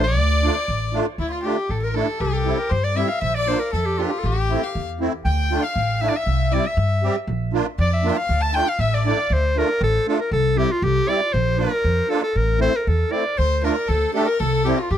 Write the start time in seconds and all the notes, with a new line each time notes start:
Already playing: A1
0.04 D5
0.18 D2
0.43 A3 D4 F4
0.68 A1
0.93 A3 D4 F4
1.18 D2 E4
1.31 F4
1.42 A3 D4 F4 G4
1.69 A1 A4
1.82 A#4
1.94 A3 D4 E4 A4
2.20 C2 G4
2.33 A4
2.45 G3 C4 E4
2.58 A#4
2.70 G2 C5
2.83 D5
2.95 G3 C4 E4 E5
3.08 F5
3.21 A#1 E5
3.34 D5
3.47 A#3 D4 F4 C5
3.59 A#4
3.72 F2 A4
3.86 G4
3.98 A#3 D4 F4 G4
4.11 G4
4.19 A4
4.24 A1 G4
4.49 A3 C4 E4
4.63 F5
4.75 E2
5.00 A3 C4 E4
5.25 D2 G5
5.51 A3 D4 F4
5.62 F5
5.76 A1
6.01 A3 D4 E4 E5
6.08 D5
6.16 E5
6.26 C2
6.52 G3 C4 E4 D5
6.64 E5
6.77 G2
7.03 G3 C4 G4
7.27 A#1
7.53 A#3 D4 F4
7.78 F2 D5
7.93 E5
8.04 A#3 D4 F4
8.11 G5
8.17 F5
8.29 D2
8.41 A5
8.54 A3 D4 F4 G5
8.68 F5
8.79 A1 E5
8.94 D5
9.05 A3 D4 E4 D5
9.30 D2 C5
9.56 A3 D4 F4 A#4
9.81 A1 A4
10.06 A3 D4 F4 A4
10.20 A#4
10.31 C2 A4
10.56 G3 C4 E4 G4
10.72 F4
10.82 C2 G4
11.07 G3 C4 E4 D5
11.33 A#1 C5
11.58 A#3 D4 F4 A#4
11.84 F2
12.09 A#3 D4 F4 A4
12.23 A4
12.36 A1 A#4
12.58 A3 C4 E4 C5
12.75 A#4
12.87 E2 A4
13.10 A3 C4 E4 D5
13.38 D2 C5
13.62 A3 D4 F4 A#4
13.88 D2 A4
14.13 A3 D4 G4 A4
14.26 A#4
14.40 C2 A4
14.64 G3 C4 E4 G4
14.78 F4
14.91 G2 G4